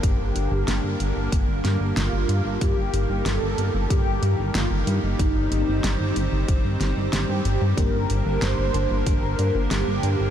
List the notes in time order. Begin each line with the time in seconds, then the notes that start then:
Already playing: D3 G3 A#3 G4
0.03 G1, kick, closed hi-hat
0.19 G1
0.35 G1, closed hi-hat
0.52 G1
0.68 G1, snare, closed hi-hat
0.84 G1
1.00 G1, closed hi-hat
1.16 G1
1.32 G1, kick, closed hi-hat
1.48 G1
1.64 G2, snare, closed hi-hat
1.80 G1
1.97 G1 F4, snare, closed hi-hat
2.13 G1
2.29 G2, closed hi-hat
2.45 G1
2.61 G1 D#3 G4, kick, closed hi-hat
2.77 G1
2.94 G1, closed hi-hat
3.10 G1
3.26 G1 A4, snare, closed hi-hat
3.42 G1
3.58 G1, closed hi-hat
3.74 G1
3.90 G1 G4, kick, closed hi-hat
4.06 G1
4.22 G2, closed hi-hat
4.39 G1
4.55 G1 F4, snare, closed hi-hat
4.71 G1
4.87 G2 D#4, closed hi-hat
5.03 G1
5.19 G1 C4, kick, closed hi-hat
5.35 G1
5.52 G1, closed hi-hat
5.68 G1
5.84 G1, snare, closed hi-hat
6.00 G1
6.16 G1, closed hi-hat
6.32 G1
6.48 G1, kick, closed hi-hat
6.64 G1
6.81 G1, snare, closed hi-hat
6.97 G1
7.13 G1 G4, snare, closed hi-hat
7.29 G2
7.45 G1, closed hi-hat
7.61 G2
7.77 G1 G2 D3 A#3 D4 G4 A#4, kick, closed hi-hat
7.94 G1
8.10 G1, closed hi-hat
8.26 G1
8.42 G1 C5, snare, closed hi-hat
8.58 G1
8.74 G1 G2 A#3 D4 A5, closed hi-hat
8.90 G1
9.07 G1 A#4, kick, closed hi-hat
9.23 G1
9.39 G2, closed hi-hat
9.55 G1
9.71 G1 G4, snare, closed hi-hat
9.87 G1
10.03 G2, closed hi-hat
10.19 G1